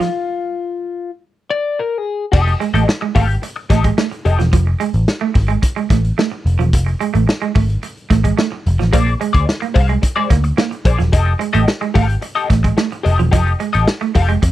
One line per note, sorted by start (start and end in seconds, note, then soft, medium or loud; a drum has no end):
0.00 1.10 F4 medium
0.00 snare soft
0.00 closed hi-hat soft
1.50 1.79 D5 loud
1.79 1.98 A#4 medium
1.98 2.25 G#4 medium
2.32 2.53 F1 loud
2.32 2.52 G4 medium
2.32 2.53 A4 medium
2.32 2.53 D#5 medium
2.32 kick loud
2.32 crash medium
2.47 muted clean electric guitar stroke soft
2.47 closed hi-hat soft
2.60 2.69 G#3 medium
2.60 muted clean electric guitar stroke soft
2.60 closed hi-hat medium
2.74 2.84 A1 medium
2.74 2.83 A3 medium
2.74 2.86 G4 soft
2.74 2.86 A4 medium
2.74 2.87 D#5 medium
2.74 closed hi-hat medium
2.87 muted clean electric guitar stroke soft
2.87 snare loud
3.01 3.11 G#3 medium
3.01 muted clean electric guitar stroke medium
3.15 3.36 G#1 medium
3.15 3.25 A3 medium
3.15 3.35 G4 medium
3.15 3.28 A4 loud
3.15 3.28 F5 loud
3.15 kick medium
3.15 open hi-hat medium
3.28 muted clean electric guitar stroke soft
3.28 closed hi-hat soft
3.42 muted clean electric guitar stroke soft
3.42 closed hi-hat medium
3.56 muted clean electric guitar stroke soft
3.70 3.90 A1 medium
3.70 3.79 A3 medium
3.70 3.89 G4 medium
3.70 3.83 A4 medium
3.70 3.82 D#5 medium
3.70 kick medium
3.70 snare soft
3.70 closed hi-hat medium
3.84 3.93 G#3 medium
3.84 muted clean electric guitar stroke soft
3.84 kick medium
3.84 closed hi-hat medium
3.98 4.07 A3 medium
3.98 muted clean electric guitar stroke soft
3.98 snare loud
4.11 muted clean electric guitar stroke soft
4.11 closed hi-hat soft
4.25 4.36 F1 medium
4.25 4.40 G4 medium
4.25 4.38 A4 medium
4.25 4.37 D#5 medium
4.25 closed hi-hat medium
4.39 4.50 E1 medium
4.39 4.48 F3 medium
4.39 muted clean electric guitar stroke soft
4.39 snare soft
4.39 closed hi-hat soft
4.53 4.73 F1 loud
4.53 4.62 F3 medium
4.53 kick loud
4.53 closed hi-hat medium
4.67 muted clean electric guitar stroke soft
4.80 4.89 G#3 medium
4.80 closed hi-hat medium
4.94 5.04 A1 medium
4.94 closed hi-hat medium
5.08 snare medium
5.21 5.30 A3 medium
5.34 5.56 G#1 loud
5.34 muted clean electric guitar stroke soft
5.34 kick loud
5.34 open hi-hat medium
5.48 5.57 G#3 medium
5.48 closed hi-hat soft
5.62 muted clean electric guitar stroke soft
5.62 kick loud
5.62 closed hi-hat loud
5.76 5.85 G#3 medium
5.76 closed hi-hat soft
5.90 6.10 A1 medium
5.90 5.99 A3 medium
5.90 kick medium
5.90 snare soft
5.90 closed hi-hat medium
6.04 closed hi-hat medium
6.18 6.27 A3 medium
6.18 snare loud
6.32 muted clean electric guitar stroke soft
6.46 6.56 F1 loud
6.46 closed hi-hat medium
6.59 6.74 E1 medium
6.59 6.68 F3 medium
6.59 closed hi-hat soft
6.73 6.93 F1 loud
6.73 kick loud
6.73 closed hi-hat loud
6.86 muted clean electric guitar stroke soft
6.86 closed hi-hat soft
7.01 7.09 G#3 medium
7.01 closed hi-hat medium
7.14 7.25 A1 medium
7.14 7.23 A3 medium
7.14 closed hi-hat medium
7.27 muted clean electric guitar stroke medium
7.27 snare loud
7.42 7.51 G#3 medium
7.42 closed hi-hat soft
7.55 7.76 G#1 loud
7.55 7.64 A3 medium
7.55 kick loud
7.55 open hi-hat medium
7.70 closed hi-hat soft
7.83 muted clean electric guitar stroke soft
7.83 closed hi-hat medium
7.97 closed hi-hat soft
8.10 8.31 A1 medium
8.10 8.19 A3 medium
8.10 kick loud
8.10 snare soft
8.10 closed hi-hat medium
8.24 8.33 G#3 medium
8.24 kick medium
8.24 closed hi-hat medium
8.37 8.46 A3 medium
8.37 snare loud
8.52 muted clean electric guitar stroke soft
8.66 8.76 F1 loud
8.66 closed hi-hat medium
8.79 8.94 A1 medium
8.79 8.88 F3 medium
8.79 snare soft
8.79 closed hi-hat soft
8.93 9.14 A#1 loud
8.93 9.02 A#3 medium
8.93 9.12 G#4 medium
8.93 9.13 C5 medium
8.93 9.13 D5 loud
8.93 kick loud
8.93 closed hi-hat loud
9.07 muted clean electric guitar stroke soft
9.07 closed hi-hat soft
9.20 9.30 G#3 medium
9.20 muted clean electric guitar stroke soft
9.20 closed hi-hat medium
9.33 9.45 D2 loud
9.33 9.45 G#4 medium
9.33 9.46 C5 medium
9.33 9.46 D5 medium
9.33 kick medium
9.33 closed hi-hat soft
9.46 muted clean electric guitar stroke soft
9.46 snare loud
9.60 9.71 A#3 medium
9.60 muted clean electric guitar stroke soft
9.60 closed hi-hat soft
9.74 9.96 C2 medium
9.74 9.94 G#4 medium
9.74 9.88 C5 medium
9.74 9.88 F5 loud
9.74 muted clean electric guitar stroke soft
9.74 kick loud
9.74 open hi-hat medium
9.88 9.98 G#3 medium
9.88 muted clean electric guitar stroke soft
9.88 closed hi-hat medium
10.02 muted clean electric guitar stroke soft
10.02 kick loud
10.02 closed hi-hat medium
10.16 10.25 G#3 medium
10.16 10.29 G#4 medium
10.16 10.30 C5 medium
10.16 10.30 D5 medium
10.30 10.51 D2 medium
10.30 10.39 A#3 medium
10.30 muted clean electric guitar stroke soft
10.30 kick loud
10.30 snare soft
10.30 closed hi-hat medium
10.44 muted clean electric guitar stroke soft
10.44 closed hi-hat medium
10.57 10.66 A#3 medium
10.57 muted clean electric guitar stroke soft
10.57 snare loud
10.71 muted clean electric guitar stroke soft
10.71 closed hi-hat soft
10.85 10.95 A#1 medium
10.85 11.00 G#4 medium
10.85 10.98 C5 medium
10.85 10.98 D5 medium
10.85 kick loud
10.85 closed hi-hat medium
10.99 11.10 E1 loud
10.99 11.08 F3 medium
10.99 muted clean electric guitar stroke soft
10.99 snare soft
10.99 closed hi-hat soft
11.12 11.33 F1 loud
11.12 11.32 G4 medium
11.12 11.32 A4 medium
11.12 11.32 D#5 medium
11.12 kick loud
11.12 closed hi-hat medium
11.26 muted clean electric guitar stroke soft
11.39 11.49 G#3 medium
11.39 muted clean electric guitar stroke soft
11.39 closed hi-hat medium
11.53 11.65 A1 medium
11.53 11.63 A3 medium
11.53 11.65 G4 soft
11.53 11.66 A4 medium
11.53 11.66 D#5 medium
11.53 closed hi-hat medium
11.67 muted clean electric guitar stroke soft
11.67 snare loud
11.81 11.90 G#3 medium
11.81 muted clean electric guitar stroke soft
11.81 closed hi-hat soft
11.94 12.16 G#1 medium
11.94 12.04 A3 medium
11.94 12.14 G4 medium
11.94 12.07 A4 loud
11.94 12.07 F5 loud
11.94 kick loud
11.94 open hi-hat medium
12.08 muted clean electric guitar stroke medium
12.08 closed hi-hat soft
12.22 muted clean electric guitar stroke soft
12.22 closed hi-hat medium
12.35 12.48 G4 medium
12.35 12.48 A4 medium
12.35 12.49 D#5 medium
12.35 closed hi-hat soft
12.49 12.70 A1 medium
12.49 12.59 A3 medium
12.49 muted clean electric guitar stroke soft
12.49 kick medium
12.49 snare soft
12.49 closed hi-hat medium
12.63 12.73 G#3 medium
12.63 muted clean electric guitar stroke medium
12.63 kick medium
12.63 closed hi-hat medium
12.77 12.87 A3 medium
12.77 muted clean electric guitar stroke soft
12.77 snare loud
12.92 muted clean electric guitar stroke medium
12.92 closed hi-hat soft
13.03 13.16 F1 loud
13.03 13.20 G4 medium
13.03 13.18 A4 medium
13.03 13.17 D#5 medium
13.03 closed hi-hat medium
13.18 13.30 E1 medium
13.18 13.28 F3 medium
13.18 muted clean electric guitar stroke medium
13.18 closed hi-hat soft
13.31 13.53 F1 loud
13.31 13.42 F3 medium
13.31 13.52 G4 medium
13.31 13.52 A4 medium
13.31 13.52 D#5 loud
13.31 kick loud
13.31 closed hi-hat medium
13.47 muted clean electric guitar stroke soft
13.59 13.69 G#3 medium
13.59 muted clean electric guitar stroke soft
13.59 closed hi-hat medium
13.73 13.85 A1 medium
13.73 13.87 G4 medium
13.73 13.87 A4 medium
13.73 13.87 D#5 medium
13.73 closed hi-hat soft
13.88 muted clean electric guitar stroke soft
13.88 snare loud
14.01 14.10 A3 medium
14.01 muted clean electric guitar stroke soft
14.01 closed hi-hat soft
14.15 14.36 F1 medium
14.15 14.35 G4 medium
14.15 14.28 A4 loud
14.15 14.28 F5 loud
14.15 muted clean electric guitar stroke soft
14.15 kick loud
14.15 open hi-hat medium
14.29 14.38 G#3 medium
14.29 muted clean electric guitar stroke medium
14.29 closed hi-hat soft
14.42 14.52 F2 loud
14.42 muted clean electric guitar stroke soft
14.42 kick medium
14.42 closed hi-hat loud